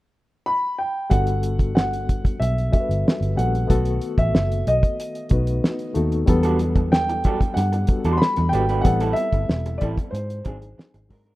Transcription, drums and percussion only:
1.11 kick, closed hi-hat
1.27 closed hi-hat
1.43 closed hi-hat
1.59 kick, closed hi-hat
1.77 snare
1.93 closed hi-hat
2.09 kick, closed hi-hat
2.25 kick, closed hi-hat
2.42 closed hi-hat
2.58 closed hi-hat
2.73 kick, closed hi-hat
2.91 closed hi-hat
3.08 snare
3.23 closed hi-hat
3.39 closed hi-hat
3.55 closed hi-hat
3.70 kick, closed hi-hat
3.85 closed hi-hat
4.01 closed hi-hat
4.18 kick, closed hi-hat
4.35 snare
4.52 closed hi-hat
4.67 closed hi-hat
4.83 kick, closed hi-hat
5.00 closed hi-hat
5.15 closed hi-hat
5.29 kick, closed hi-hat
5.47 closed hi-hat
5.64 snare
5.79 closed hi-hat
5.95 closed hi-hat
6.12 closed hi-hat
6.27 kick, closed hi-hat
6.43 closed hi-hat
6.59 closed hi-hat
6.76 kick, closed hi-hat
6.93 snare
7.09 closed hi-hat
7.24 kick, closed hi-hat
7.41 kick, closed hi-hat
7.57 snare, closed hi-hat
7.73 closed hi-hat
7.87 kick, closed hi-hat
8.04 closed hi-hat
8.22 snare
8.36 closed hi-hat
8.53 closed hi-hat
8.69 closed hi-hat
8.85 kick, closed hi-hat
9.00 closed hi-hat
9.16 closed hi-hat
9.33 kick, closed hi-hat
9.49 snare
9.66 closed hi-hat
9.81 kick, closed hi-hat
9.98 kick, closed hi-hat
10.15 closed hi-hat
10.30 closed hi-hat
10.45 kick, closed hi-hat
10.62 closed hi-hat
10.79 snare
10.94 closed hi-hat
11.10 kick, open hi-hat
11.26 closed hi-hat

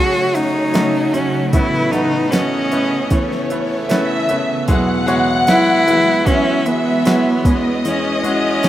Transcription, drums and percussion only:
0.35 open hi-hat
0.74 snare, open hi-hat
1.14 open hi-hat
1.53 kick, open hi-hat
1.93 open hi-hat
2.32 snare, open hi-hat
2.72 open hi-hat
3.10 kick, open hi-hat
3.32 snare
3.50 open hi-hat
3.89 snare, open hi-hat
4.29 open hi-hat
4.68 kick, open hi-hat
5.08 open hi-hat
5.47 snare, open hi-hat
5.88 open hi-hat
6.26 kick, open hi-hat
6.66 open hi-hat
7.05 snare, open hi-hat
7.45 kick, open hi-hat
7.85 open hi-hat
8.24 open hi-hat
8.63 snare, open hi-hat

